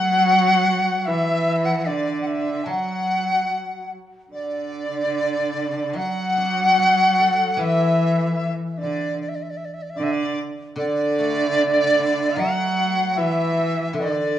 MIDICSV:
0, 0, Header, 1, 5, 480
1, 0, Start_track
1, 0, Tempo, 803213
1, 643, Time_signature, 4, 2, 24, 8
1, 2093, Tempo, 819672
1, 4493, Tempo, 796813
1, 8582, End_track
2, 0, Start_track
2, 0, Title_t, "Dizi"
2, 0, Program_c, 0, 73
2, 0, Note_on_c, 0, 78, 115
2, 629, Note_on_c, 0, 76, 100
2, 638, Note_off_c, 0, 78, 0
2, 987, Note_on_c, 0, 78, 84
2, 996, Note_off_c, 0, 76, 0
2, 1108, Note_on_c, 0, 74, 74
2, 1117, Note_off_c, 0, 78, 0
2, 1317, Note_off_c, 0, 74, 0
2, 1326, Note_on_c, 0, 78, 50
2, 1354, Note_on_c, 0, 76, 75
2, 1363, Note_off_c, 0, 78, 0
2, 1609, Note_on_c, 0, 78, 81
2, 1618, Note_off_c, 0, 76, 0
2, 2333, Note_off_c, 0, 78, 0
2, 2583, Note_on_c, 0, 74, 89
2, 3521, Note_off_c, 0, 74, 0
2, 3534, Note_on_c, 0, 78, 103
2, 4498, Note_on_c, 0, 76, 97
2, 4507, Note_off_c, 0, 78, 0
2, 5061, Note_off_c, 0, 76, 0
2, 5222, Note_on_c, 0, 74, 75
2, 5444, Note_off_c, 0, 74, 0
2, 5466, Note_on_c, 0, 74, 62
2, 5508, Note_on_c, 0, 76, 62
2, 5517, Note_off_c, 0, 74, 0
2, 5549, Note_on_c, 0, 74, 59
2, 5558, Note_off_c, 0, 76, 0
2, 5591, Note_on_c, 0, 76, 62
2, 5600, Note_off_c, 0, 74, 0
2, 5639, Note_on_c, 0, 74, 66
2, 5648, Note_off_c, 0, 76, 0
2, 5679, Note_on_c, 0, 76, 60
2, 5688, Note_off_c, 0, 74, 0
2, 5727, Note_on_c, 0, 74, 56
2, 5736, Note_off_c, 0, 76, 0
2, 5781, Note_on_c, 0, 76, 60
2, 5790, Note_off_c, 0, 74, 0
2, 5831, Note_on_c, 0, 74, 53
2, 5840, Note_off_c, 0, 76, 0
2, 5878, Note_on_c, 0, 76, 59
2, 5887, Note_off_c, 0, 74, 0
2, 5931, Note_on_c, 0, 74, 74
2, 5940, Note_off_c, 0, 76, 0
2, 6180, Note_off_c, 0, 74, 0
2, 6406, Note_on_c, 0, 74, 108
2, 7380, Note_on_c, 0, 78, 99
2, 7389, Note_off_c, 0, 74, 0
2, 7857, Note_on_c, 0, 76, 99
2, 7866, Note_off_c, 0, 78, 0
2, 8351, Note_on_c, 0, 74, 90
2, 8360, Note_off_c, 0, 76, 0
2, 8582, Note_off_c, 0, 74, 0
2, 8582, End_track
3, 0, Start_track
3, 0, Title_t, "Dizi"
3, 0, Program_c, 1, 73
3, 0, Note_on_c, 1, 78, 98
3, 607, Note_off_c, 1, 78, 0
3, 607, Note_on_c, 1, 78, 59
3, 645, Note_on_c, 1, 76, 83
3, 654, Note_off_c, 1, 78, 0
3, 1123, Note_on_c, 1, 74, 67
3, 1132, Note_off_c, 1, 76, 0
3, 1574, Note_on_c, 1, 81, 48
3, 1583, Note_off_c, 1, 74, 0
3, 1615, Note_on_c, 1, 78, 73
3, 1624, Note_off_c, 1, 81, 0
3, 2336, Note_off_c, 1, 78, 0
3, 2571, Note_on_c, 1, 74, 68
3, 3537, Note_on_c, 1, 78, 87
3, 3545, Note_off_c, 1, 74, 0
3, 4488, Note_on_c, 1, 76, 72
3, 4497, Note_off_c, 1, 78, 0
3, 4935, Note_off_c, 1, 76, 0
3, 4940, Note_on_c, 1, 76, 66
3, 5051, Note_off_c, 1, 76, 0
3, 5174, Note_on_c, 1, 76, 39
3, 5204, Note_on_c, 1, 74, 61
3, 5213, Note_off_c, 1, 76, 0
3, 5452, Note_off_c, 1, 74, 0
3, 5911, Note_on_c, 1, 74, 77
3, 5959, Note_on_c, 1, 76, 69
3, 5968, Note_off_c, 1, 74, 0
3, 6009, Note_on_c, 1, 74, 83
3, 6018, Note_off_c, 1, 76, 0
3, 6178, Note_off_c, 1, 74, 0
3, 6408, Note_on_c, 1, 74, 83
3, 7363, Note_on_c, 1, 78, 89
3, 7372, Note_off_c, 1, 74, 0
3, 7836, Note_off_c, 1, 78, 0
3, 7839, Note_on_c, 1, 76, 78
3, 8323, Note_on_c, 1, 74, 72
3, 8332, Note_off_c, 1, 76, 0
3, 8582, Note_off_c, 1, 74, 0
3, 8582, End_track
4, 0, Start_track
4, 0, Title_t, "Guzheng"
4, 0, Program_c, 2, 107
4, 0, Note_on_c, 2, 50, 59
4, 0, Note_on_c, 2, 54, 58
4, 0, Note_on_c, 2, 69, 47
4, 162, Note_off_c, 2, 50, 0
4, 173, Note_off_c, 2, 69, 0
4, 1121, Note_off_c, 2, 54, 0
4, 1589, Note_on_c, 2, 54, 57
4, 3049, Note_off_c, 2, 54, 0
4, 3516, Note_on_c, 2, 54, 54
4, 3770, Note_on_c, 2, 62, 38
4, 4012, Note_on_c, 2, 66, 44
4, 4251, Note_on_c, 2, 69, 42
4, 4472, Note_on_c, 2, 52, 59
4, 4730, Note_off_c, 2, 62, 0
4, 4963, Note_off_c, 2, 54, 0
4, 4972, Note_off_c, 2, 66, 0
4, 5215, Note_off_c, 2, 69, 0
4, 5929, Note_off_c, 2, 52, 0
4, 6395, Note_on_c, 2, 50, 58
4, 6653, Note_on_c, 2, 57, 43
4, 6892, Note_on_c, 2, 62, 43
4, 7133, Note_on_c, 2, 64, 42
4, 7360, Note_on_c, 2, 54, 64
4, 7610, Note_off_c, 2, 57, 0
4, 7839, Note_off_c, 2, 50, 0
4, 7848, Note_off_c, 2, 62, 0
4, 8088, Note_off_c, 2, 64, 0
4, 8307, Note_on_c, 2, 50, 60
4, 8582, Note_off_c, 2, 50, 0
4, 8582, Note_off_c, 2, 54, 0
4, 8582, End_track
5, 0, Start_track
5, 0, Title_t, "Cello"
5, 0, Program_c, 3, 42
5, 0, Note_on_c, 3, 54, 102
5, 644, Note_on_c, 3, 52, 80
5, 653, Note_off_c, 3, 54, 0
5, 1126, Note_on_c, 3, 50, 74
5, 1135, Note_off_c, 3, 52, 0
5, 1611, Note_on_c, 3, 54, 69
5, 1620, Note_off_c, 3, 50, 0
5, 2334, Note_off_c, 3, 54, 0
5, 2571, Note_on_c, 3, 50, 70
5, 3528, Note_on_c, 3, 54, 87
5, 3537, Note_off_c, 3, 50, 0
5, 4483, Note_on_c, 3, 52, 80
5, 4492, Note_off_c, 3, 54, 0
5, 5054, Note_off_c, 3, 52, 0
5, 5214, Note_on_c, 3, 50, 57
5, 5439, Note_off_c, 3, 50, 0
5, 5924, Note_on_c, 3, 50, 84
5, 6159, Note_off_c, 3, 50, 0
5, 6421, Note_on_c, 3, 50, 83
5, 7372, Note_on_c, 3, 54, 89
5, 7381, Note_off_c, 3, 50, 0
5, 7852, Note_on_c, 3, 52, 87
5, 7861, Note_off_c, 3, 54, 0
5, 8333, Note_off_c, 3, 52, 0
5, 8336, Note_on_c, 3, 50, 68
5, 8582, Note_off_c, 3, 50, 0
5, 8582, End_track
0, 0, End_of_file